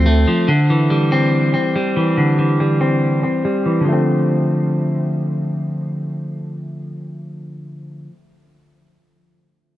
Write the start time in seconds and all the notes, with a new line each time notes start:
Already playing: D2 C4
0.06 A3
0.28 F3
0.48 D3
0.70 E3
0.90 G3
1.12 C4
1.54 C4
1.76 G3
1.96 E3
2.17 D3
2.39 E3
2.60 G3
2.81 C4
3.23 C4
3.45 G3
3.66 E3
3.81 D3
3.85 F3 A3
3.93 C4